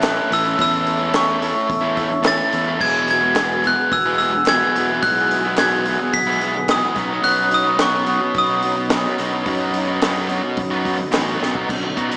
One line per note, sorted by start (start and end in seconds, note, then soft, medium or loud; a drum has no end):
0.00 0.19 A1 loud
0.00 0.44 A2 medium
0.00 0.30 E3 medium
0.00 0.16 A3 medium
0.00 0.29 C#4 medium
0.00 0.15 C#4 loud
0.00 0.18 E4 medium
0.00 0.14 A4 loud
0.00 2.75 C#5 medium
0.00 2.75 E5 medium
0.00 2.76 A5 medium
0.00 5.00 E6 medium
0.00 0.36 F#6 medium
0.00 snare loud
0.00 clap medium
0.00 open hi-hat medium
0.04 0.15 E4 loud
0.15 0.30 A3 medium
0.15 0.31 C#4 medium
0.15 0.33 E4 medium
0.15 0.30 E4 medium
0.15 0.31 A4 medium
0.30 0.54 A1 loud
0.30 0.58 E3 medium
0.30 0.47 A3 medium
0.30 0.57 C#4 medium
0.30 0.46 C#4 medium
0.30 0.46 E4 medium
0.30 0.44 E4 medium
0.30 0.43 A4 medium
0.30 0.60 E6 medium
0.30 snare soft
0.30 open hi-hat medium
0.44 0.57 A3 medium
0.44 0.59 C#4 medium
0.44 0.60 E4 medium
0.44 0.60 A4 medium
0.57 1.53 E2 loud
0.57 1.11 A2 medium
0.57 1.13 E3 loud
0.57 1.01 A3 medium
0.57 0.84 C#4 medium
0.57 1.00 C#4 medium
0.57 0.86 E4 medium
0.57 0.99 E4 medium
0.57 kick loud
0.57 open hi-hat medium
0.61 0.85 A4 loud
0.61 1.17 E6 medium
0.85 1.13 C#4 medium
0.85 1.02 E4 medium
0.85 0.99 A4 medium
0.85 open hi-hat medium
0.99 1.13 A3 medium
0.99 1.14 C#4 medium
0.99 1.15 E4 medium
0.99 1.15 A4 medium
1.12 1.69 A2 medium
1.12 1.40 E3 loud
1.12 1.40 A3 loud
1.12 1.40 C#4 medium
1.12 1.41 C#4 loud
1.12 1.43 E4 loud
1.12 1.42 A4 loud
1.12 2.29 C#6 medium
1.12 snare loud
1.12 clap medium
1.12 open hi-hat medium
1.40 1.54 E3 medium
1.40 1.53 A3 medium
1.40 1.83 C#4 medium
1.40 1.53 C#4 medium
1.40 1.57 E4 medium
1.40 1.53 E4 loud
1.40 1.54 A4 medium
1.40 open hi-hat medium
1.53 1.98 E4 medium
1.53 1.98 A4 medium
1.53 muted distorted electric guitar stroke medium
1.69 2.40 E2 medium
1.69 kick loud
1.69 open hi-hat medium
1.81 2.08 C#4 medium
1.81 2.09 E4 medium
1.85 2.09 A3 medium
1.97 2.25 C#4 medium
1.97 2.13 E4 medium
1.97 2.10 A4 medium
1.97 kick medium
1.97 open hi-hat medium
2.10 2.26 E4 medium
2.10 2.25 A4 medium
2.10 muted distorted electric guitar stroke soft
2.22 2.65 A2 loud
2.22 2.50 E3 loud
2.22 2.39 A3 medium
2.22 2.38 C#4 loud
2.22 2.53 C#4 medium
2.22 2.37 E4 medium
2.22 2.41 E4 medium
2.22 snare loud
2.22 clap medium
2.22 open hi-hat medium
2.26 2.38 A4 loud
2.26 2.84 A6 loud
2.38 2.50 A3 medium
2.38 2.51 C#4 medium
2.38 2.53 E4 medium
2.38 2.55 E4 medium
2.38 2.55 A4 medium
2.50 2.77 E2 medium
2.50 2.79 E3 medium
2.50 2.67 A3 medium
2.50 2.66 C#4 medium
2.50 2.65 E4 medium
2.50 open hi-hat medium
2.54 2.80 C#4 medium
2.54 2.69 E4 medium
2.54 2.67 A4 medium
2.66 2.79 A3 medium
2.66 2.79 C#4 medium
2.66 2.80 E4 medium
2.66 2.82 E4 medium
2.66 2.80 A4 medium
2.77 3.74 E1 loud
2.77 3.34 E2 medium
2.77 3.34 B2 medium
2.77 3.22 E3 medium
2.77 3.22 G#3 medium
2.77 3.20 B3 medium
2.77 3.19 E4 medium
2.77 6.93 B4 medium
2.77 11.65 F#5 medium
2.77 6.93 G#5 medium
2.77 kick loud
2.77 crash loud
2.81 3.08 F#3 medium
2.81 3.09 B3 medium
2.81 3.10 F#4 medium
2.81 3.10 G#4 loud
2.81 3.07 G#6 loud
3.08 3.37 F#3 medium
3.08 3.24 B3 medium
3.08 3.24 F#4 medium
3.08 3.22 G#4 medium
3.08 3.61 G#6 loud
3.08 open hi-hat medium
3.20 3.35 E3 medium
3.20 3.36 G#3 medium
3.20 3.37 B3 medium
3.20 3.37 E4 medium
3.20 3.39 G#4 medium
3.24 3.37 B3 medium
3.24 3.38 F#4 medium
3.34 3.91 E2 loud
3.34 3.91 B2 loud
3.34 3.60 E3 loud
3.34 3.64 F#3 medium
3.34 3.61 G#3 loud
3.34 3.63 B3 loud
3.34 3.65 B3 medium
3.34 3.64 E4 medium
3.34 snare loud
3.34 clap medium
3.34 open hi-hat medium
3.38 3.65 F#4 loud
3.38 3.65 G#4 loud
3.61 3.76 E3 medium
3.61 4.20 F#3 medium
3.61 3.75 G#3 medium
3.61 3.76 B3 medium
3.61 3.81 B3 medium
3.61 3.75 E4 medium
3.61 3.79 F#4 medium
3.61 open hi-hat medium
3.66 3.78 G#4 medium
3.66 3.94 F#6 medium
3.76 4.21 F#4 medium
3.76 4.21 G#4 medium
3.76 muted distorted electric guitar stroke medium
3.81 4.21 B3 medium
3.91 4.62 E1 loud
3.91 4.17 E6 loud
3.91 kick loud
3.91 open hi-hat medium
4.05 4.32 E3 medium
4.05 4.32 G#3 medium
4.05 4.33 B3 medium
4.05 4.31 E4 medium
4.18 4.49 F#3 medium
4.18 4.38 B3 medium
4.18 4.36 F#4 medium
4.18 4.34 G#4 medium
4.18 4.47 E6 medium
4.18 open hi-hat medium
4.32 4.51 G#4 medium
4.32 muted distorted electric guitar stroke medium
4.36 4.50 B3 medium
4.36 4.51 F#4 medium
4.46 4.88 E2 loud
4.46 4.89 B2 medium
4.46 4.61 E3 loud
4.46 4.75 F#3 medium
4.46 4.61 G#3 loud
4.46 4.60 B3 loud
4.46 5.05 G#6 loud
4.46 snare loud
4.46 clap medium
4.46 open hi-hat medium
4.50 4.66 B3 loud
4.50 4.58 E4 loud
4.50 4.65 F#4 medium
4.50 4.62 G#4 loud
4.59 4.72 E3 medium
4.59 4.74 G#3 medium
4.59 4.76 B3 medium
4.59 4.76 E4 medium
4.59 4.77 G#4 medium
4.65 4.77 B3 medium
4.65 4.77 F#4 medium
4.74 4.99 E1 medium
4.74 4.89 E3 medium
4.74 5.06 F#3 medium
4.74 4.88 G#3 medium
4.74 4.89 B3 medium
4.74 4.93 B3 medium
4.74 4.86 E4 medium
4.74 4.93 F#4 medium
4.74 open hi-hat medium
4.79 4.90 G#4 medium
4.87 5.02 E3 medium
4.87 5.02 G#3 medium
4.87 5.04 B3 medium
4.87 5.04 E4 medium
4.92 5.06 B3 medium
4.92 5.07 F#4 medium
4.92 5.07 G#4 medium
5.00 5.96 B1 loud
5.00 5.56 E2 medium
5.00 5.57 B2 medium
5.00 5.45 G#3 loud
5.00 11.63 D#6 medium
5.00 5.60 F#6 loud
5.00 kick loud
5.00 open hi-hat medium
5.04 5.46 E3 medium
5.04 5.33 F#3 medium
5.04 5.45 B3 loud
5.04 5.33 B3 loud
5.04 5.43 E4 loud
5.04 5.35 F#4 medium
5.08 5.34 G#4 loud
5.31 5.60 F#3 medium
5.31 5.48 B3 medium
5.31 open hi-hat medium
5.35 5.47 F#4 medium
5.35 5.44 G#4 medium
5.44 5.57 E3 medium
5.44 5.58 G#3 medium
5.44 5.60 B3 medium
5.44 5.59 E4 medium
5.44 5.61 F#4 medium
5.44 5.60 G#4 medium
5.49 5.60 B3 medium
5.57 6.13 E2 loud
5.57 6.14 B2 loud
5.57 5.84 E3 loud
5.57 5.85 F#3 loud
5.57 5.86 G#3 loud
5.57 5.86 B3 medium
5.57 5.88 B3 loud
5.57 5.88 E4 loud
5.57 5.87 F#4 loud
5.57 5.87 G#4 loud
5.57 6.16 G#6 loud
5.57 snare loud
5.57 clap medium
5.57 open hi-hat medium
5.86 6.00 E3 medium
5.86 6.41 F#3 medium
5.86 6.00 G#3 medium
5.86 6.03 B3 medium
5.86 6.01 B3 medium
5.86 6.00 E4 medium
5.86 6.02 F#4 medium
5.86 6.00 G#4 medium
5.86 open hi-hat medium
6.01 6.42 B3 medium
6.01 6.43 F#4 medium
6.01 6.43 G#4 medium
6.01 muted distorted electric guitar stroke medium
6.13 6.84 B1 medium
6.13 6.71 B6 loud
6.13 kick loud
6.13 open hi-hat medium
6.27 6.55 E3 medium
6.27 6.54 G#3 medium
6.27 6.56 B3 medium
6.27 6.55 E4 medium
6.41 6.68 F#3 medium
6.41 6.58 B3 medium
6.41 6.57 F#4 medium
6.41 6.55 G#4 medium
6.41 open hi-hat medium
6.55 6.70 B3 medium
6.55 6.69 F#4 medium
6.55 6.69 G#4 medium
6.55 muted distorted electric guitar stroke soft
6.69 6.95 E2 loud
6.69 6.95 B2 medium
6.69 6.86 E3 loud
6.69 6.96 F#3 medium
6.69 6.85 G#3 loud
6.69 6.85 B3 loud
6.69 6.84 F#4 loud
6.69 6.81 G#4 loud
6.69 7.27 D#6 loud
6.69 snare loud
6.69 clap medium
6.69 open hi-hat medium
6.73 6.82 E4 loud
6.83 6.97 G#3 medium
6.83 6.96 B3 medium
6.83 6.98 B3 medium
6.83 6.95 E4 medium
6.83 6.98 F#4 medium
6.83 6.95 G#4 medium
6.87 6.97 E3 medium
6.93 7.20 B1 loud
6.93 7.23 B2 medium
6.93 7.21 F#3 medium
6.93 7.11 C#4 medium
6.93 11.63 C#5 medium
6.93 11.63 B5 medium
6.93 kick loud
6.93 snare soft
6.93 open hi-hat medium
6.98 7.24 F#3 loud
6.98 7.13 B3 medium
6.98 7.08 D#4 loud
6.98 7.11 D#4 loud
6.98 7.10 F#4 loud
7.09 7.23 C#4 medium
7.09 7.23 D#4 medium
7.09 7.26 D#4 medium
7.09 7.26 F#4 medium
7.14 7.25 B3 medium
7.22 8.18 B1 loud
7.22 7.78 B2 loud
7.22 7.50 F#3 medium
7.22 7.79 F#3 loud
7.22 7.67 B3 medium
7.22 7.51 C#4 loud
7.22 7.51 D#4 loud
7.22 7.53 F#6 loud
7.22 open hi-hat medium
7.26 7.66 D#4 loud
7.26 7.64 F#4 loud
7.50 7.76 F#3 medium
7.50 7.65 C#4 medium
7.50 7.63 D#4 medium
7.50 open hi-hat medium
7.54 7.82 D#6 medium
7.63 7.77 C#4 medium
7.63 7.78 D#4 medium
7.63 7.81 D#4 medium
7.63 7.81 F#4 medium
7.68 7.80 B3 medium
7.76 8.89 B2 loud
7.76 8.06 F#3 medium
7.76 8.05 F#3 loud
7.76 8.06 B3 loud
7.76 8.06 C#4 loud
7.76 8.07 D#4 loud
7.76 snare loud
7.76 clap loud
7.76 open hi-hat medium
7.81 8.08 D#4 loud
7.81 8.08 F#4 loud
7.81 8.32 C#6 medium
8.05 8.22 F#3 medium
8.05 8.63 F#3 medium
8.05 8.21 B3 medium
8.05 8.22 C#4 medium
8.05 8.20 D#4 medium
8.05 8.22 D#4 medium
8.05 8.21 F#4 loud
8.05 open hi-hat medium
8.21 8.64 C#4 medium
8.21 8.65 D#4 medium
8.21 muted distorted electric guitar stroke medium
8.35 9.05 B1 loud
8.35 11.11 D#6 medium
8.35 kick loud
8.35 open hi-hat medium
8.47 8.78 B3 medium
8.47 8.77 D#4 medium
8.47 8.77 F#4 medium
8.62 8.89 F#3 medium
8.62 8.76 C#4 medium
8.62 8.74 D#4 medium
8.62 open hi-hat medium
8.74 8.90 C#4 medium
8.74 8.92 D#4 medium
8.74 muted distorted electric guitar stroke soft
8.89 9.45 B2 medium
8.89 9.18 F#3 medium
8.89 9.17 F#3 loud
8.89 9.06 B3 loud
8.89 9.06 C#4 medium
8.89 9.03 D#4 loud
8.89 9.05 D#4 loud
8.89 snare loud
8.89 clap loud
8.89 open hi-hat loud
8.94 9.03 F#4 medium
9.04 9.19 B3 medium
9.04 9.19 C#4 medium
9.04 9.20 D#4 medium
9.04 9.21 F#4 medium
9.18 9.42 B1 medium
9.18 9.45 F#3 medium
9.18 9.34 B3 medium
9.18 9.34 C#4 medium
9.18 9.32 D#4 medium
9.18 9.33 D#4 medium
9.18 9.31 F#4 medium
9.18 snare soft
9.18 open hi-hat medium
9.32 9.46 B3 medium
9.32 9.46 C#4 medium
9.32 9.47 D#4 medium
9.32 9.46 D#4 medium
9.32 9.47 F#4 medium
9.46 10.40 F#2 loud
9.46 10.01 B2 medium
9.46 10.01 F#3 medium
9.46 9.73 F#3 medium
9.46 9.90 B3 medium
9.46 9.74 C#4 medium
9.46 9.88 D#4 loud
9.46 9.75 D#4 loud
9.46 9.86 F#4 loud
9.46 kick loud
9.46 open hi-hat medium
9.74 9.99 F#3 medium
9.74 9.88 C#4 medium
9.74 9.86 D#4 medium
9.74 open hi-hat medium
9.87 10.02 B3 medium
9.87 10.00 C#4 medium
9.87 10.01 D#4 medium
9.87 10.03 D#4 medium
9.87 10.04 F#4 medium
10.00 10.57 B2 medium
10.00 10.28 F#3 medium
10.00 10.27 F#3 loud
10.00 10.28 B3 loud
10.00 10.30 C#4 loud
10.00 10.31 D#4 loud
10.00 snare loud
10.00 clap medium
10.00 open hi-hat medium
10.04 10.29 D#4 loud
10.04 10.30 F#4 loud
10.28 10.43 F#3 medium
10.28 10.71 F#3 medium
10.28 10.42 B3 medium
10.28 10.44 C#4 medium
10.28 10.42 D#4 medium
10.28 10.42 F#4 medium
10.28 open hi-hat medium
10.32 10.42 D#4 medium
10.43 10.86 C#4 medium
10.43 10.87 D#4 medium
10.43 muted distorted electric guitar stroke soft
10.57 11.05 F#2 medium
10.57 kick loud
10.57 open hi-hat medium
10.71 10.97 B3 medium
10.71 10.96 D#4 medium
10.71 10.96 F#4 medium
10.85 11.13 F#3 medium
10.85 11.00 C#4 medium
10.85 10.98 D#4 medium
10.85 kick medium
10.85 open hi-hat medium
10.97 11.15 D#4 medium
10.97 muted distorted electric guitar stroke soft
11.01 11.14 C#4 medium
11.11 11.39 A1 medium
11.11 11.54 B2 medium
11.11 11.38 F#3 medium
11.11 11.40 F#3 medium
11.11 11.28 B3 medium
11.11 11.27 D#4 loud
11.11 11.24 F#4 loud
11.11 snare loud
11.11 clap medium
11.11 open hi-hat medium
11.16 11.30 C#4 medium
11.16 11.26 D#4 medium
11.25 11.41 D#4 medium
11.25 11.42 F#4 medium
11.29 11.40 B3 medium
11.29 11.41 C#4 medium
11.39 11.67 B1 medium
11.39 11.66 F#3 medium
11.39 11.67 F#3 medium
11.39 11.56 B3 medium
11.39 11.57 C#4 medium
11.39 11.55 D#4 medium
11.39 11.54 F#4 medium
11.39 snare medium
11.55 11.68 B3 medium
11.55 11.69 C#4 medium
11.55 11.68 D#4 medium
11.55 11.67 F#4 medium
11.55 kick medium
11.69 11.92 B1 loud
11.69 12.17 F#3 medium
11.69 12.14 C#4 medium
11.69 12.12 D#4 medium
11.69 kick loud
11.69 crash loud
11.83 muted distorted electric guitar stroke soft
11.96 12.17 B2 medium
11.96 12.08 F#3 medium
11.96 12.09 B3 medium
11.96 12.09 D#4 medium
11.96 12.07 F#4 medium
11.96 kick medium
11.96 closed hi-hat medium
12.09 12.17 F#3 medium
12.09 12.17 B3 medium
12.09 12.17 D#4 medium
12.09 12.17 F#4 medium
12.09 closed hi-hat medium
12.13 12.17 D#4 medium